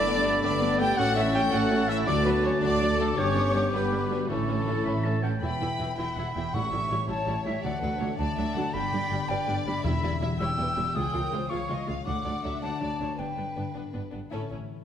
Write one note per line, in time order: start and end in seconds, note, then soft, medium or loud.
0.00 0.36 G1 medium
0.00 0.36 G2 medium
0.00 0.99 G2 medium
0.00 0.41 A3 medium
0.00 2.09 A3 medium
0.00 0.41 B3 medium
0.00 0.40 D4 loud
0.00 0.23 A4 medium
0.00 0.94 A4 medium
0.00 0.41 D5 loud
0.00 0.42 D5 loud
0.00 0.94 A5 medium
0.00 0.97 B5 medium
0.06 0.13 A3 medium
0.06 0.99 B3 medium
0.06 0.14 B3 medium
0.24 0.32 A3 medium
0.24 0.32 B3 medium
0.24 0.78 A4 medium
0.41 0.91 G1 medium
0.41 0.91 G2 medium
0.41 0.95 A3 medium
0.41 0.50 A3 medium
0.41 0.96 B3 medium
0.41 0.50 B3 medium
0.41 0.78 D4 medium
0.41 0.79 D5 loud
0.41 0.81 D5 loud
0.41 0.99 G5 medium
0.61 0.69 A3 medium
0.61 0.69 B3 medium
0.61 0.99 B4 medium
0.78 0.87 A3 medium
0.78 0.87 B3 medium
0.78 0.97 G4 medium
0.78 0.99 G5 loud
0.78 0.97 G5 loud
0.96 1.46 A1 medium
0.96 1.46 A2 medium
0.96 2.09 A2 medium
0.96 2.05 A3 medium
0.96 1.06 A3 medium
0.96 2.05 C#4 medium
0.96 1.06 C#4 medium
0.96 1.16 F#4 loud
0.96 2.10 A4 medium
0.96 1.15 F#5 loud
0.96 1.16 F#5 loud
0.96 3.19 A5 medium
0.96 2.08 C#6 medium
1.15 1.24 A3 medium
1.15 2.09 C#4 medium
1.15 1.24 C#4 medium
1.15 1.34 E4 medium
1.15 1.24 E5 medium
1.15 1.35 E5 loud
1.33 1.42 A3 medium
1.33 1.42 C#4 medium
1.33 1.41 G4 medium
1.33 1.88 A4 medium
1.33 1.43 G5 medium
1.33 1.53 G5 loud
1.51 2.01 A1 medium
1.51 2.01 A2 medium
1.51 1.60 A3 medium
1.51 1.60 C#4 medium
1.51 1.88 F#4 medium
1.51 2.09 E5 medium
1.51 1.90 F#5 medium
1.51 1.90 F#5 loud
1.70 1.78 A3 medium
1.70 1.78 C#4 medium
1.70 2.09 C#5 medium
1.88 1.96 A3 medium
1.88 1.96 C#4 medium
1.88 2.07 E4 medium
1.88 2.07 E5 medium
1.88 1.97 E5 loud
2.07 2.56 D2 medium
2.07 2.57 D2 medium
2.07 3.20 D3 medium
2.07 2.15 F#3 medium
2.07 2.61 A3 medium
2.07 2.15 D4 medium
2.07 2.26 D4 medium
2.07 2.61 F#4 medium
2.07 3.01 F#4 medium
2.07 2.25 D5 loud
2.07 4.07 D6 medium
2.25 2.33 F#3 medium
2.25 4.31 A3 medium
2.25 2.44 B3 medium
2.25 2.33 D4 medium
2.25 2.44 B4 medium
2.25 2.34 B4 medium
2.44 2.51 F#3 medium
2.44 2.63 C#4 medium
2.44 2.51 D4 medium
2.44 2.63 C#5 medium
2.44 2.53 C#5 medium
2.61 3.12 D2 medium
2.61 2.69 F#3 medium
2.61 3.17 A3 medium
2.61 2.69 D4 medium
2.61 3.00 D4 medium
2.61 3.17 F#4 medium
2.61 2.99 D5 loud
2.61 3.20 F#5 medium
2.81 2.88 F#3 medium
2.81 2.88 D4 medium
2.99 3.07 F#3 medium
2.99 3.07 A3 medium
2.99 3.07 D4 medium
2.99 3.18 A4 medium
3.17 3.67 G1 medium
3.17 4.31 G2 medium
3.17 3.67 G2 medium
3.17 3.25 G3 medium
3.17 3.73 B3 medium
3.17 3.73 C#4 medium
3.17 3.25 D4 medium
3.17 4.31 G4 medium
3.17 3.74 G4 medium
3.17 3.74 C#5 loud
3.17 3.54 C#5 medium
3.17 4.12 G5 medium
3.35 4.31 D3 medium
3.35 3.43 G3 medium
3.35 3.43 D4 medium
3.54 3.62 G3 medium
3.54 3.62 D4 medium
3.73 4.23 G1 medium
3.73 4.23 G2 medium
3.73 3.81 G3 medium
3.73 4.28 B3 medium
3.73 4.29 B3 medium
3.73 3.82 D4 medium
3.73 4.02 G4 medium
3.73 4.26 B4 medium
3.73 4.30 B4 medium
3.73 4.32 G5 medium
3.92 4.00 G3 medium
3.92 4.00 D4 medium
3.92 4.32 D5 soft
4.03 4.30 F#4 medium
4.11 4.18 G3 medium
4.11 4.18 D4 medium
4.29 4.79 A1 medium
4.29 4.79 A2 medium
4.29 5.44 A2 medium
4.29 4.37 E3 medium
4.29 5.23 A3 medium
4.29 4.37 C#4 medium
4.29 5.24 C#4 medium
4.29 5.23 E4 medium
4.29 5.24 E4 medium
4.29 5.22 A4 medium
4.29 5.21 A4 medium
4.29 4.81 A5 medium
4.29 5.21 C#6 medium
4.48 4.56 E3 medium
4.48 4.56 C#4 medium
4.48 5.44 C#4 soft
4.67 4.74 E3 medium
4.67 4.75 C#4 medium
4.67 5.04 C#5 medium
4.85 5.35 A1 medium
4.85 5.36 A2 medium
4.85 4.93 E3 medium
4.85 4.93 C#4 medium
4.85 7.65 E5 medium
4.85 5.05 B5 medium
5.04 5.12 E3 medium
5.04 5.12 C#4 soft
5.04 5.44 C#5 soft
5.04 5.24 A5 medium
5.22 5.31 E3 soft
5.22 5.31 C#4 medium
5.22 5.60 E4 medium
5.22 5.40 A4 medium
5.22 5.28 F#5 medium
5.22 5.42 G5 medium
5.42 5.49 E1 medium
5.42 5.49 E2 medium
5.42 6.55 E2 medium
5.42 5.50 E3 soft
5.42 5.50 E4 soft
5.42 5.98 B4 medium
5.42 5.96 G5 medium
5.42 5.94 B5 medium
5.60 5.68 E1 soft
5.60 5.68 E2 soft
5.60 5.68 E3 soft
5.60 5.68 E4 soft
5.60 5.97 E4 soft
5.79 5.87 E1 soft
5.79 5.87 E2 soft
5.79 6.55 B2 soft
5.79 5.87 E3 soft
5.79 5.87 E4 soft
5.97 6.05 E1 medium
5.97 6.05 E2 soft
5.97 6.06 E3 soft
5.97 6.06 E4 soft
5.97 6.71 E4 soft
5.97 6.51 E5 medium
5.97 6.16 G5 medium
5.97 6.56 B5 medium
6.15 6.24 E1 medium
6.15 6.24 E2 medium
6.15 6.25 E3 soft
6.15 6.25 E4 soft
6.15 7.26 G4 soft
6.15 6.34 F#5 medium
6.34 6.42 E1 medium
6.34 6.42 E2 medium
6.34 6.44 E3 soft
6.34 6.44 E4 soft
6.34 6.55 B4 soft
6.34 6.52 G5 medium
6.52 6.61 A1 medium
6.52 6.61 A2 medium
6.52 7.05 A2 medium
6.52 7.65 A2 medium
6.52 6.62 G3 medium
6.52 6.62 E4 medium
6.52 7.07 E5 medium
6.52 6.71 F#5 medium
6.52 7.09 C#6 medium
6.71 6.79 A1 soft
6.71 6.79 A2 medium
6.71 6.79 G3 soft
6.71 6.79 E4 soft
6.71 7.08 E4 soft
6.71 6.90 E5 medium
6.90 6.97 A1 medium
6.90 6.98 A2 soft
6.90 7.65 E3 soft
6.90 6.98 G3 soft
6.90 6.98 E4 soft
6.90 7.07 C#5 medium
7.08 7.16 A1 medium
7.08 7.16 A2 medium
7.08 7.15 G3 medium
7.08 7.16 E4 medium
7.08 7.65 E4 soft
7.08 7.62 C#5 medium
7.08 7.44 C#5 medium
7.08 7.45 A5 medium
7.26 7.33 A1 medium
7.26 7.34 A2 medium
7.26 7.34 G3 medium
7.26 7.34 E4 soft
7.26 7.65 G4 soft
7.44 7.52 A1 medium
7.44 7.52 A2 medium
7.44 7.53 G3 soft
7.44 7.53 E4 soft
7.44 7.63 G4 medium
7.44 7.63 E5 medium
7.63 7.71 D2 medium
7.63 8.75 D3 medium
7.63 7.71 F#3 medium
7.63 7.71 D4 medium
7.63 8.19 A4 medium
7.63 7.82 D5 medium
7.63 8.17 F#5 medium
7.82 7.89 D2 medium
7.82 7.90 F#3 soft
7.82 8.17 D4 soft
7.82 7.90 D4 soft
7.82 8.00 B4 medium
7.99 8.08 D2 medium
7.99 8.08 F#3 medium
7.99 8.75 A3 soft
7.99 8.08 D4 medium
7.99 8.18 C#5 medium
8.18 8.26 D2 medium
8.18 8.27 F#3 medium
8.18 8.91 D4 soft
8.18 8.27 D4 medium
8.18 8.72 D5 medium
8.18 8.37 D5 medium
8.18 8.75 A5 medium
8.37 8.44 D2 medium
8.37 8.45 D2 medium
8.37 8.45 F#3 medium
8.37 8.44 D4 medium
8.37 8.75 F#4 soft
8.37 8.55 E5 medium
8.55 8.63 D2 medium
8.55 8.64 D2 medium
8.55 8.64 F#3 medium
8.55 8.64 D4 medium
8.55 8.74 F#5 medium
8.73 8.82 G1 medium
8.73 9.85 G2 medium
8.73 8.81 G2 medium
8.73 8.81 G3 medium
8.73 8.81 D4 medium
8.73 9.28 D5 medium
8.73 9.28 G5 medium
8.73 9.30 B5 medium
8.92 9.00 G1 medium
8.92 8.99 G2 medium
8.92 9.00 G3 medium
8.92 9.28 D4 soft
8.92 9.00 D4 medium
9.10 9.18 G1 medium
9.10 9.18 G2 medium
9.10 9.86 D3 medium
9.10 9.19 G3 medium
9.10 9.19 D4 medium
9.29 9.37 G1 medium
9.29 9.36 G2 medium
9.29 9.37 G3 medium
9.29 9.86 D4 soft
9.29 9.37 D4 medium
9.29 9.66 B4 medium
9.29 9.84 D5 medium
9.29 9.66 G5 medium
9.47 9.55 G1 medium
9.47 9.55 G2 medium
9.47 9.55 G3 medium
9.47 9.55 D4 medium
9.47 10.57 G4 soft
9.65 9.73 G1 medium
9.65 9.73 G2 medium
9.65 9.74 G3 medium
9.65 9.74 D4 medium
9.65 10.75 B4 medium
9.65 9.84 D5 medium
9.65 9.84 B5 medium
9.84 9.92 E1 medium
9.84 9.91 E2 medium
9.84 10.36 E2 medium
9.84 10.97 E3 medium
9.84 9.92 G3 medium
9.84 9.91 E4 medium
9.84 10.40 E5 medium
9.84 10.03 E5 medium
9.84 10.17 B5 medium
10.02 10.11 E1 medium
10.02 10.10 E2 medium
10.02 10.11 G3 medium
10.02 10.39 E4 medium
10.02 10.10 E4 medium
10.02 10.11 D5 medium
10.20 10.29 E1 medium
10.20 10.28 E2 medium
10.20 10.29 G3 medium
10.20 10.97 B3 soft
10.20 10.28 E4 medium
10.20 10.30 E5 medium
10.39 10.47 E1 medium
10.39 10.47 E2 medium
10.39 10.47 G3 medium
10.39 10.97 E4 soft
10.39 10.47 E4 medium
10.39 10.49 C#5 medium
10.39 10.95 G5 medium
10.39 10.97 E6 medium
10.58 10.66 E1 medium
10.58 10.65 E2 medium
10.58 10.65 G3 medium
10.58 10.66 E4 medium
10.58 10.96 G4 soft
10.58 10.68 B4 soft
10.76 10.85 E1 medium
10.76 10.84 E2 medium
10.76 10.84 G3 soft
10.76 10.84 E4 medium
10.76 10.96 G4 medium
10.76 10.97 B4 medium
10.94 11.03 C#2 medium
10.94 12.07 C#3 medium
10.94 11.02 G#3 medium
10.94 11.02 F4 medium
10.94 11.14 G#4 medium
10.94 11.50 G5 medium
10.94 11.51 D#6 medium
11.13 11.21 C#2 medium
11.13 11.22 C#2 soft
11.13 11.21 G#3 soft
11.13 11.49 F4 soft
11.13 11.21 F4 soft
11.13 11.32 A#4 medium
11.31 11.40 C#2 medium
11.31 11.39 G#3 soft
11.31 12.08 G#3 soft
11.31 11.39 F4 medium
11.31 11.51 C5 medium
11.50 11.58 C#2 soft
11.50 11.59 C#2 medium
11.50 11.58 G#3 soft
11.50 12.07 F4 soft
11.50 11.58 F4 medium
11.50 11.69 C#5 medium
11.50 11.86 F5 medium
11.50 11.87 C#6 medium
11.69 11.77 C#2 medium
11.69 11.76 G#3 soft
11.69 11.76 F4 soft
11.69 12.07 G#4 soft
11.69 11.88 D#5 medium
11.87 11.95 C#2 medium
11.87 11.96 C#2 soft
11.87 11.94 G#3 soft
11.87 11.94 F4 soft
11.87 12.08 C#5 soft
11.87 12.06 F5 medium
12.06 12.14 D2 medium
12.06 12.15 D2 medium
12.06 13.20 D3 medium
12.06 12.13 F#3 soft
12.06 12.13 D4 soft
12.06 12.58 F#5 medium
12.06 12.24 F#5 medium
12.06 12.58 D6 medium
12.24 12.32 D2 soft
12.24 12.33 D2 soft
12.24 12.32 F#3 soft
12.24 12.32 D4 soft
12.24 12.61 D4 soft
12.24 12.43 D5 soft
12.43 12.51 D2 soft
12.43 12.52 D2 soft
12.43 12.51 F#3 soft
12.43 13.20 A3 soft
12.43 12.51 D4 soft
12.43 12.62 E5 soft
12.61 12.70 D2 soft
12.61 12.70 F#3 soft
12.61 13.37 D4 soft
12.61 12.70 D4 soft
12.61 13.18 D5 medium
12.61 12.80 F#5 medium
12.61 13.20 A5 medium
12.80 12.89 D2 soft
12.80 12.87 F#3 soft
12.80 12.88 D4 soft
12.80 13.20 F#4 soft
12.80 13.00 D5 soft
12.99 13.07 D2 soft
12.99 13.08 D2 soft
12.99 13.08 F#3 soft
12.99 13.07 D4 soft
12.99 13.20 A4 soft
12.99 13.08 C#5 soft
13.18 13.26 G1 soft
13.18 14.34 G2 soft
13.18 13.27 G2 soft
13.18 13.26 B3 soft
13.18 13.26 D4 soft
13.18 13.75 B4 soft
13.18 14.02 B4 soft
13.18 13.75 G5 soft
13.37 13.45 G1 soft
13.37 13.45 G2 soft
13.37 13.45 B3 soft
13.37 13.45 D4 soft
13.37 13.74 D4 soft
13.56 13.64 G1 soft
13.56 13.65 G2 soft
13.56 14.33 D3 soft
13.56 13.64 B3 soft
13.56 13.64 D4 soft
13.75 13.83 G1 soft
13.75 13.83 G2 soft
13.75 13.82 B3 soft
13.75 13.83 D4 soft
13.75 14.33 D4 soft
13.93 14.02 G1 soft
13.93 14.02 G2 soft
13.93 14.01 B3 soft
13.93 14.01 D4 soft
13.93 14.33 G4 soft
14.12 14.21 G1 soft
14.12 14.21 G2 soft
14.12 14.20 B3 soft
14.12 14.20 D4 soft
14.12 14.33 B4 soft
14.31 14.40 A1 soft
14.31 14.84 A2 soft
14.31 14.40 A2 soft
14.31 14.49 C#4 soft
14.31 14.49 E4 soft
14.31 14.49 A4 soft
14.50 14.58 A1 soft
14.50 14.58 A2 soft
14.50 14.84 E3 soft
14.50 14.58 C#4 soft
14.50 14.59 C#4 soft
14.50 14.58 E4 soft
14.69 14.84 C#4 soft